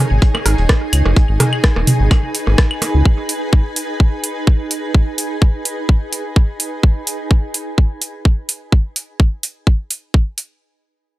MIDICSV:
0, 0, Header, 1, 5, 480
1, 0, Start_track
1, 0, Key_signature, 5, "minor"
1, 0, Tempo, 472441
1, 1184, Time_signature, 4, 2, 24, 8
1, 11368, End_track
2, 0, Start_track
2, 0, Title_t, "Ambient pad"
2, 0, Program_c, 0, 92
2, 0, Note_on_c, 0, 63, 78
2, 0, Note_on_c, 0, 68, 79
2, 0, Note_on_c, 0, 73, 67
2, 0, Note_on_c, 0, 80, 74
2, 1283, Note_on_c, 0, 71, 70
2, 1421, Note_off_c, 0, 73, 0
2, 6943, Note_off_c, 0, 71, 0
2, 6943, Note_off_c, 0, 80, 0
2, 6944, Note_off_c, 0, 63, 0
2, 6944, Note_off_c, 0, 68, 0
2, 11368, End_track
3, 0, Start_track
3, 0, Title_t, "Analog synth bass"
3, 0, Program_c, 1, 38
3, 113, Note_on_c, 1, 32, 98
3, 201, Note_off_c, 1, 32, 0
3, 464, Note_on_c, 1, 32, 101
3, 567, Note_off_c, 1, 32, 0
3, 593, Note_on_c, 1, 27, 92
3, 681, Note_off_c, 1, 27, 0
3, 943, Note_on_c, 1, 37, 92
3, 1046, Note_off_c, 1, 37, 0
3, 1072, Note_on_c, 1, 30, 91
3, 1161, Note_off_c, 1, 30, 0
3, 1313, Note_on_c, 1, 32, 100
3, 1401, Note_off_c, 1, 32, 0
3, 1792, Note_on_c, 1, 27, 75
3, 1881, Note_off_c, 1, 27, 0
3, 2033, Note_on_c, 1, 32, 98
3, 2121, Note_off_c, 1, 32, 0
3, 2512, Note_on_c, 1, 32, 94
3, 2601, Note_off_c, 1, 32, 0
3, 2992, Note_on_c, 1, 37, 101
3, 3081, Note_off_c, 1, 37, 0
3, 11368, End_track
4, 0, Start_track
4, 0, Title_t, "Percussion blips"
4, 352, Note_on_c, 9, 61, 45
4, 454, Note_off_c, 9, 61, 0
4, 704, Note_on_c, 9, 61, 41
4, 805, Note_off_c, 9, 61, 0
4, 1072, Note_on_c, 9, 61, 46
4, 1174, Note_off_c, 9, 61, 0
4, 1423, Note_on_c, 9, 61, 45
4, 1524, Note_off_c, 9, 61, 0
4, 1792, Note_on_c, 9, 61, 47
4, 1893, Note_off_c, 9, 61, 0
4, 2143, Note_on_c, 9, 61, 44
4, 2244, Note_off_c, 9, 61, 0
4, 2512, Note_on_c, 9, 61, 41
4, 2613, Note_off_c, 9, 61, 0
4, 2864, Note_on_c, 9, 61, 44
4, 2965, Note_off_c, 9, 61, 0
4, 11368, End_track
5, 0, Start_track
5, 0, Title_t, "Drums"
5, 224, Note_on_c, 9, 36, 116
5, 224, Note_on_c, 9, 42, 83
5, 325, Note_off_c, 9, 36, 0
5, 326, Note_off_c, 9, 42, 0
5, 352, Note_on_c, 9, 75, 65
5, 454, Note_off_c, 9, 75, 0
5, 463, Note_on_c, 9, 37, 60
5, 464, Note_on_c, 9, 42, 68
5, 464, Note_on_c, 9, 46, 98
5, 565, Note_off_c, 9, 37, 0
5, 565, Note_off_c, 9, 42, 0
5, 565, Note_off_c, 9, 46, 0
5, 593, Note_on_c, 9, 42, 43
5, 694, Note_off_c, 9, 42, 0
5, 703, Note_on_c, 9, 37, 92
5, 704, Note_on_c, 9, 36, 113
5, 704, Note_on_c, 9, 38, 118
5, 704, Note_on_c, 9, 42, 92
5, 805, Note_off_c, 9, 36, 0
5, 805, Note_off_c, 9, 37, 0
5, 805, Note_off_c, 9, 38, 0
5, 805, Note_off_c, 9, 42, 0
5, 943, Note_on_c, 9, 42, 65
5, 943, Note_on_c, 9, 46, 97
5, 944, Note_on_c, 9, 75, 60
5, 1045, Note_off_c, 9, 42, 0
5, 1045, Note_off_c, 9, 46, 0
5, 1045, Note_off_c, 9, 75, 0
5, 1183, Note_on_c, 9, 42, 85
5, 1184, Note_on_c, 9, 36, 125
5, 1285, Note_off_c, 9, 36, 0
5, 1285, Note_off_c, 9, 42, 0
5, 1423, Note_on_c, 9, 37, 59
5, 1423, Note_on_c, 9, 38, 53
5, 1423, Note_on_c, 9, 42, 63
5, 1423, Note_on_c, 9, 46, 98
5, 1423, Note_on_c, 9, 47, 77
5, 1524, Note_off_c, 9, 37, 0
5, 1524, Note_off_c, 9, 47, 0
5, 1525, Note_off_c, 9, 38, 0
5, 1525, Note_off_c, 9, 42, 0
5, 1525, Note_off_c, 9, 46, 0
5, 1552, Note_on_c, 9, 75, 60
5, 1653, Note_off_c, 9, 75, 0
5, 1663, Note_on_c, 9, 36, 111
5, 1663, Note_on_c, 9, 37, 90
5, 1663, Note_on_c, 9, 38, 113
5, 1663, Note_on_c, 9, 42, 89
5, 1764, Note_off_c, 9, 38, 0
5, 1764, Note_off_c, 9, 42, 0
5, 1765, Note_off_c, 9, 36, 0
5, 1765, Note_off_c, 9, 37, 0
5, 1903, Note_on_c, 9, 42, 68
5, 1903, Note_on_c, 9, 46, 97
5, 1903, Note_on_c, 9, 47, 82
5, 2004, Note_off_c, 9, 42, 0
5, 2004, Note_off_c, 9, 47, 0
5, 2005, Note_off_c, 9, 46, 0
5, 2143, Note_on_c, 9, 36, 111
5, 2143, Note_on_c, 9, 42, 83
5, 2143, Note_on_c, 9, 75, 63
5, 2244, Note_off_c, 9, 75, 0
5, 2245, Note_off_c, 9, 36, 0
5, 2245, Note_off_c, 9, 42, 0
5, 2383, Note_on_c, 9, 42, 61
5, 2383, Note_on_c, 9, 46, 90
5, 2485, Note_off_c, 9, 42, 0
5, 2485, Note_off_c, 9, 46, 0
5, 2623, Note_on_c, 9, 37, 87
5, 2623, Note_on_c, 9, 38, 120
5, 2623, Note_on_c, 9, 42, 89
5, 2624, Note_on_c, 9, 36, 114
5, 2725, Note_off_c, 9, 36, 0
5, 2725, Note_off_c, 9, 37, 0
5, 2725, Note_off_c, 9, 38, 0
5, 2725, Note_off_c, 9, 42, 0
5, 2752, Note_on_c, 9, 75, 66
5, 2854, Note_off_c, 9, 75, 0
5, 2863, Note_on_c, 9, 42, 62
5, 2863, Note_on_c, 9, 46, 89
5, 2965, Note_off_c, 9, 42, 0
5, 2965, Note_off_c, 9, 46, 0
5, 3104, Note_on_c, 9, 36, 115
5, 3205, Note_off_c, 9, 36, 0
5, 3343, Note_on_c, 9, 46, 92
5, 3445, Note_off_c, 9, 46, 0
5, 3584, Note_on_c, 9, 36, 112
5, 3685, Note_off_c, 9, 36, 0
5, 3823, Note_on_c, 9, 46, 90
5, 3925, Note_off_c, 9, 46, 0
5, 4064, Note_on_c, 9, 36, 106
5, 4166, Note_off_c, 9, 36, 0
5, 4304, Note_on_c, 9, 46, 87
5, 4405, Note_off_c, 9, 46, 0
5, 4544, Note_on_c, 9, 36, 107
5, 4646, Note_off_c, 9, 36, 0
5, 4784, Note_on_c, 9, 46, 90
5, 4885, Note_off_c, 9, 46, 0
5, 5024, Note_on_c, 9, 36, 106
5, 5126, Note_off_c, 9, 36, 0
5, 5264, Note_on_c, 9, 46, 87
5, 5365, Note_off_c, 9, 46, 0
5, 5504, Note_on_c, 9, 36, 102
5, 5606, Note_off_c, 9, 36, 0
5, 5744, Note_on_c, 9, 46, 89
5, 5845, Note_off_c, 9, 46, 0
5, 5984, Note_on_c, 9, 36, 98
5, 6085, Note_off_c, 9, 36, 0
5, 6224, Note_on_c, 9, 46, 80
5, 6325, Note_off_c, 9, 46, 0
5, 6464, Note_on_c, 9, 36, 107
5, 6565, Note_off_c, 9, 36, 0
5, 6704, Note_on_c, 9, 46, 85
5, 6805, Note_off_c, 9, 46, 0
5, 6944, Note_on_c, 9, 36, 114
5, 7045, Note_off_c, 9, 36, 0
5, 7184, Note_on_c, 9, 46, 90
5, 7285, Note_off_c, 9, 46, 0
5, 7424, Note_on_c, 9, 36, 100
5, 7525, Note_off_c, 9, 36, 0
5, 7663, Note_on_c, 9, 46, 80
5, 7765, Note_off_c, 9, 46, 0
5, 7904, Note_on_c, 9, 36, 97
5, 8005, Note_off_c, 9, 36, 0
5, 8144, Note_on_c, 9, 46, 84
5, 8245, Note_off_c, 9, 46, 0
5, 8384, Note_on_c, 9, 36, 98
5, 8485, Note_off_c, 9, 36, 0
5, 8624, Note_on_c, 9, 46, 87
5, 8726, Note_off_c, 9, 46, 0
5, 8864, Note_on_c, 9, 36, 107
5, 8965, Note_off_c, 9, 36, 0
5, 9104, Note_on_c, 9, 46, 85
5, 9205, Note_off_c, 9, 46, 0
5, 9344, Note_on_c, 9, 36, 104
5, 9445, Note_off_c, 9, 36, 0
5, 9584, Note_on_c, 9, 46, 83
5, 9685, Note_off_c, 9, 46, 0
5, 9824, Note_on_c, 9, 36, 101
5, 9925, Note_off_c, 9, 36, 0
5, 10064, Note_on_c, 9, 46, 83
5, 10165, Note_off_c, 9, 46, 0
5, 10304, Note_on_c, 9, 36, 102
5, 10405, Note_off_c, 9, 36, 0
5, 10544, Note_on_c, 9, 46, 82
5, 10645, Note_off_c, 9, 46, 0
5, 11368, End_track
0, 0, End_of_file